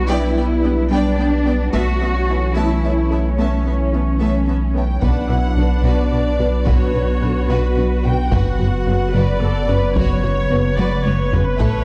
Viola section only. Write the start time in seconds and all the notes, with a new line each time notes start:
0.10 B3
0.38 B3
0.64 B3
0.92 B3
1.19 B3
1.47 B3
1.74 B3
2.01 B3
2.29 B3
2.56 B3
2.84 B3
3.11 B3
3.38 B3
3.66 B3
3.93 B3
4.20 B3
4.48 B3
4.74 B3
5.02 D4
5.30 E4
5.58 D4
6.67 F#4
8.31 F#4
9.14 B4
9.43 A4
9.69 B4
9.96 C#5
10.78 D5
11.05 C#5
11.33 B4